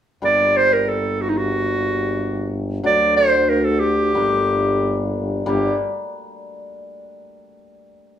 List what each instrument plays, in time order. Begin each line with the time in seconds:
0.22 tuba G1, hammered dulcimer G3 A#3 D4, clarinet D5
0.57 clarinet C5
0.73 clarinet A#4
0.88 clarinet A4
1.22 clarinet F#4
1.29 clarinet D#4
1.37 clarinet F#4
2.83 tuba D2, hammered dulcimer F#3 A3 D4, clarinet D5
3.16 hammered dulcimer D3 A3 D4, clarinet C5
3.49 clarinet A#4
3.64 clarinet A4
3.80 clarinet G4
4.15 tuba G1, hammered dulcimer G3 A#3 D4
5.46 tuba G1, hammered dulcimer G3 A#3 D4, clarinet G4